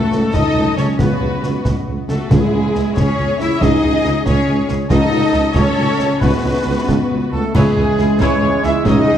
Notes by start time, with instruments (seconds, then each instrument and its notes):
Already playing: harp C#3 F#3 D#4 D#5, french horn section A3, cello section A3, violin section F#4 A4, viola section A4
0.01 harp A4
0.11 double bass section C#2, tuba C#2, harp F#4, snare
0.22 harp D#5
0.33 tuba C#2, double bass section C#2, french horn section D#4, cello section D#4, violin section A4 D#5, viola section D#5, harp A5, concert bass drum, snare
0.44 harp D#5
0.55 tuba C#2, double bass section C#2, harp A4
0.66 harp F#3
0.77 double bass section C#2, tuba C#2, harp C#4, french horn section C#4, cello section C#4, violin section A4 C#5, viola section C#5, snare
0.88 harp F#3
0.99 double bass section C#2, tuba C#2, timpani C#3, harp C#3, cello section B3, french horn section B3, violin section F#4 B4, viola section B4, concert bass drum, snare
1.10 harp B3
1.20 double bass section C#2, tuba C#2, harp D#4
1.32 harp F#4
1.42 double bass section C#2, tuba C#2, harp B4, snare
1.54 harp D#5
1.65 double bass section C#2, tuba C#2, harp F#5, concert bass drum, snare
1.76 harp D#5
1.87 double bass section C#2, tuba C#2, harp F#4
1.97 harp B3
2.09 double bass section C#2, tuba C#2, french horn section A3, cello section A3, harp C#4, violin section F#4 A4, viola section A4, snare
2.20 harp B3
2.31 tuba C#2, double bass section C#2, timpani C#3, harp C#3, cello section G#3, french horn section G#3, violin section E4 G#4, viola section G#4, concert bass drum, snare, crash
2.42 harp B3
2.53 tuba C#2, double bass section C#2, harp E4
2.64 harp G#4
2.75 tuba C#2, double bass section C#2, harp B4, snare
2.86 harp E5
2.97 tuba C#2, double bass section C#2, french horn section C#4, cello section C#4, violin section G#4 C#5, viola section C#5, harp G#5, concert bass drum, snare
3.08 harp E5
3.19 tuba C#2, double bass section C#2, harp G#4
3.30 harp B3
3.40 double bass section C#2, tuba C#2, harp G#3, cello section E4, french horn section E4, violin section C#5 E5, viola section E5, snare
3.52 harp B3
3.61 double bass section C#2, tuba C#2, timpani C#3, harp C#3, french horn section D#4, cello section D#4, violin section G#4 D#5, viola section D#5, concert bass drum, snare
3.73 harp G#3
3.84 tuba C#2, double bass section C#2, harp D#4
3.95 harp G#4
4.05 tuba C#2, double bass section C#2, harp D#4, snare
4.16 harp D#5
4.26 tuba C#2, double bass section C#2, cello section C#4, french horn section C#4, violin section G#4 C#5, viola section C#5, harp G#5, concert bass drum, snare
4.38 harp D#5
4.48 tuba C#2, double bass section C#2, harp G#4
4.60 harp G#3
4.69 double bass section C#2, tuba C#2, harp C#4, snare
4.81 harp G#3
4.90 double bass section C#2, tuba C#2, timpani C#3, harp C#3, cello section D#4, french horn section D#4, violin section A4 D#5, viola section D#5, concert bass drum, snare
5.03 harp A3
5.13 tuba C#2, double bass section C#2, harp D#4
5.24 harp F#4
5.33 tuba C#2, double bass section C#2, harp A4, snare
5.45 harp D#5
5.55 tuba C#2, double bass section C#2, cello section C#4, french horn section C#4, violin section A4 C#5, viola section C#5, harp F#5, concert bass drum, snare
5.66 harp D#5
5.77 tuba C#2, double bass section C#2, harp F#4
5.89 harp A3
5.99 tuba C#2, double bass section C#2, harp C#4, snare
6.11 harp A3
6.21 tuba C#2, double bass section C#2, harp C#3, cello section B3, french horn section B3, violin section F#4 B4, viola section B4, concert bass drum, snare
6.34 harp B3
6.44 tuba C#2, double bass section C#2, harp D#4
6.56 harp F#4
6.66 tuba C#2, double bass section C#2
6.78 harp D#5
6.88 tuba C#2, double bass section C#2, harp F#5, concert bass drum, snare
7.00 harp D#5
7.11 tuba C#2, double bass section C#2, harp F#4
7.22 harp B3
7.33 tuba C#2, double bass section C#2, french horn section A3, harp C#4, trumpet section A4, violin section A4, flute section A4
7.44 harp B3
7.55 tuba C#2, double bass section C#2, cello section C#2, harp C#3, trombone section E3 G#3, french horn section G#3, viola section E4 G#4, trumpet section G#4, flute section G#4, violin section G#4 B4 C#5, concert bass drum, snare, crash
7.66 harp B3
7.77 tuba C#2, cello section C#2, double bass section C#2, harp E4, viola section E4 G#4, violin section G#4 B4
7.88 harp G#4
7.98 tuba C#2, cello section C#2, double bass section C#2, viola section E4 G#4, violin section E4 G#4, harp B4, snare
8.10 harp E5
8.20 tuba C#2, double bass section C#2, cello section C#2, french horn section C#4, viola section E4 G#4, violin section B4 C#5, trumpet section C#5, flute section C#5, harp G#5, concert bass drum, snare
8.31 harp E5
8.41 tuba C#2, double bass section C#2, cello section C#2, viola section E4 G#4, harp G#4, violin section G#4 B4
8.53 harp B3
8.63 tuba C#2, cello section C#2, double bass section C#2, harp G#3, viola section E4 G#4, violin section E4 G#4 E5, french horn section E4, flute section E5, trumpet section E5, snare
8.74 harp B3
8.85 tuba C#2, cello section C#2, double bass section C#2, harp C#3, timpani C#3, trombone section D#3, french horn section D#4, viola section G#4, violin section C#5 D#5, flute section D#5, trumpet section D#5, concert bass drum, snare
8.96 harp C#4
9.06 tuba C#2, cello section C#2, double bass section C#2, viola section G#4, violin section G#4 C#5